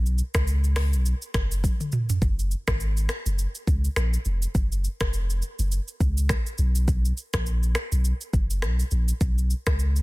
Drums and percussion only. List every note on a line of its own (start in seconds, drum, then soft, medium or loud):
0.06 shaker medium
0.18 shaker soft
0.34 finger snap medium
0.34 kick medium
0.34 cross-stick loud
0.34 shaker medium
0.47 shaker medium
0.64 shaker medium
0.76 finger snap medium
0.76 cross-stick loud
0.76 open hi-hat medium
0.76 shaker medium
0.93 shaker loud
1.06 shaker medium
1.22 shaker medium
1.34 finger snap medium
1.34 kick medium
1.34 cross-stick loud
1.34 shaker soft
1.51 shaker medium
1.64 kick loud
1.64 high tom medium
1.64 shaker medium
1.80 mid tom medium
1.80 shaker medium
1.92 mid tom loud
1.92 shaker medium
2.09 floor tom medium
2.09 shaker loud
2.22 kick loud
2.22 shaker medium
2.39 shaker medium
2.51 shaker medium
2.67 finger snap medium
2.67 kick medium
2.67 cross-stick loud
2.67 shaker medium
2.80 shaker medium
2.97 shaker medium
3.09 finger snap medium
3.09 cross-stick medium
3.09 shaker medium
3.26 shaker loud
3.39 shaker medium
3.55 shaker medium
3.67 kick medium
3.67 shaker medium
3.84 shaker medium
3.96 finger snap medium
3.96 cross-stick medium
3.96 shaker medium
4.13 shaker medium
4.25 shaker medium
4.42 shaker loud
4.55 kick loud
4.55 shaker medium
4.72 shaker medium
4.84 shaker medium
5.00 finger snap medium
5.00 kick medium
5.00 cross-stick loud
5.00 shaker loud
5.13 shaker medium
5.30 shaker medium
5.42 shaker medium
5.59 shaker loud
5.72 shaker medium
5.88 shaker medium
6.00 kick medium
6.00 shaker medium
6.17 shaker loud
6.29 finger snap medium
6.29 kick loud
6.29 cross-stick medium
6.29 shaker medium
6.46 shaker medium
6.58 shaker medium
6.75 shaker loud
6.88 kick loud
6.88 shaker medium
7.05 shaker medium
7.17 shaker medium
7.33 finger snap medium
7.33 kick medium
7.33 cross-stick loud
7.33 shaker medium
7.46 shaker medium
7.63 shaker medium
7.75 finger snap medium
7.75 cross-stick medium
7.75 shaker medium
7.92 shaker loud
8.05 shaker medium
8.21 shaker medium
8.33 kick medium
8.33 shaker medium
8.50 shaker loud
8.62 finger snap medium
8.62 cross-stick medium
8.62 shaker medium
8.79 shaker medium
8.91 shaker medium
9.08 shaker loud
9.21 kick loud
9.21 shaker medium
9.38 shaker medium
9.50 shaker medium
9.66 finger snap medium
9.66 kick medium
9.66 cross-stick loud
9.66 shaker medium
9.79 shaker medium
9.96 shaker medium